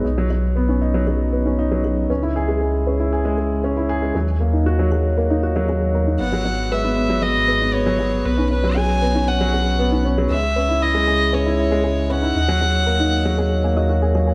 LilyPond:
<<
  \new Staff \with { instrumentName = "Violin" } { \time 4/4 \key cis \dorian \tempo 4 = 117 r1 | r1 | r1 | fis''4 e''4 dis''4 cis''4 |
b'8 b'8 gis''4 fis''4. r8 | e''4 dis''4 cis''4. fis''8~ | fis''2. r4 | }
  \new Staff \with { instrumentName = "Synth arpeggio sound" } { \time 4/4 \key cis \dorian r16 gis'16 gis'16 r16 b'16 dis'16 r16 gis'16 gis'16 r16 b'16 dis'16 r16 gis'16 gis'16 r16 | b'16 dis'16 r16 gis'16 gis'16 r16 b'16 dis'16 r16 gis'16 gis'16 r16 b'16 dis'16 r16 gis'16 | gis'16 r16 ais'16 dis'16 r16 gis'16 gis'16 r16 ais'16 dis'16 r16 gis'16 gis'16 r16 ais'16 dis'16 | r16 gis'16 gis'16 r16 b'16 dis'16 r16 gis'16 gis'16 r16 b'16 dis'16 r16 gis'16 gis'16 r16 |
b'16 dis'16 r16 gis'16 gis'16 r16 b'16 dis'16 r16 gis'16 gis'16 r16 b'16 dis'16 r16 gis'16 | gis'16 r16 b'16 dis'16 r16 gis'16 gis'16 r16 b'16 dis'16 r16 gis'16 gis'16 r16 b'16 dis'16 | r16 gis'16 gis'16 r16 ais'16 dis'16 r16 gis'16 gis'16 r16 gis'16 dis''16 r16 gis'16 gis'16 gis'16 | }
  \new Staff \with { instrumentName = "Upright piano" } { \time 4/4 \key cis \dorian dis'16 fis16 fis16 r16 b16 cis'16 dis'16 fis16 fis16 r16 b16 cis'16 dis'16 fis16 fis16 r16 | cis'16 e'16 gis'16 gis16 gis16 r16 cis'16 e'16 gis'16 gis16 gis16 r16 cis'16 e'16 gis'16 gis16 | fis16 r16 ais16 dis'16 fis'16 fis16 fis16 r16 ais16 dis'16 fis'16 fis16 fis16 r16 ais16 dis'16 | b16 fis16 fis16 r16 gis16 b16 b16 fis16 fis16 r16 gis16 b16 b16 fis16 fis16 r16 |
b16 cis'16 cis'16 fis16 fis16 r16 b16 cis'16 cis'16 fis16 fis16 r16 b16 cis'16 cis'16 fis16 | gis16 r16 cis'16 e'16 e'16 gis16 gis16 r16 cis'16 e'16 e'16 gis16 gis16 r16 cis'16 e'16 | dis'16 fis16 fis16 r16 ais16 dis'16 dis'16 fis16 fis16 r16 ais16 fis'16 fis'16 ais16 fis16 r16 | }
  \new Staff \with { instrumentName = "Detuned saw bass" } { \clef bass \time 4/4 \key cis \dorian b,,1 | cis,1 | dis,1 | gis,,1 |
b,,1 | cis,1 | dis,1 | }
>>